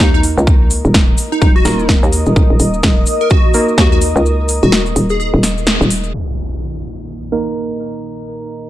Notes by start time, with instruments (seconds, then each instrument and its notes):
Already playing: synth stab A#3 D#4 A#4, analog synth pad A#4 D#5 D#6
0.00 fm bass D#2, digital synth lead D#4, kick, snare, cabasa
0.14 digital synth lead D#4, cabasa
0.23 open hi-hat, cabasa
0.38 fm bass C#2, cabasa
0.47 kick, cabasa
0.70 open hi-hat, cabasa
0.85 fm bass D#1, cabasa
0.94 kick, snare, cabasa
1.18 open hi-hat, cabasa
1.32 digital synth lead D#4, cabasa
1.42 fm bass D#1, digital synth lead D#4, kick, cabasa
1.56 digital synth lead F#4
1.65 fm bass D#1, synth stab A#3 D#4 A#4, snare, open hi-hat, cabasa
1.79 cabasa
1.89 kick, snare, cabasa
2.03 fm bass D#2, cabasa
2.13 open hi-hat, cabasa
2.26 fm bass D#1, cabasa
2.36 fm bass D#1, kick, cabasa
2.50 fm bass D#1
2.59 fm bass D#1, open hi-hat, cabasa
2.74 cabasa
2.83 fm bass D#1, kick, snare, cabasa
3.06 open hi-hat, cabasa
3.21 digital synth lead A#4, cabasa
3.30 digital synth lead F#4, kick, cabasa
3.54 synth stab A#3 D#4 A#4, open hi-hat, cabasa
3.68 cabasa
3.78 fm bass D#2, digital synth lead F#4, kick, snare, cabasa
3.92 digital synth lead F#4, cabasa
4.01 open hi-hat, cabasa
4.16 fm bass C#2, cabasa
4.26 cabasa
4.48 open hi-hat, cabasa
4.63 fm bass D#1, digital synth lead F#4, cabasa
4.72 snare, cabasa
4.86 cabasa
4.96 fm bass D#1, open hi-hat, cabasa
5.10 digital synth lead G#4, cabasa
5.20 digital synth lead G#4, cabasa
5.34 fm bass D#1
5.43 snare, open hi-hat, cabasa
5.58 cabasa
5.67 snare, cabasa
5.81 fm bass D#1, cabasa
5.90 open hi-hat, cabasa
6.04 cabasa
6.14 analog synth pad A#3 D#4 D#5, impact, cabasa
6.37 cabasa
6.51 cabasa
6.61 cabasa
6.85 cabasa
7.32 synth stab A#3 D#4 A#4, cabasa
7.46 cabasa
7.56 cabasa
7.71 cabasa
7.79 cabasa
8.04 cabasa
8.27 cabasa
8.41 cabasa
8.51 cabasa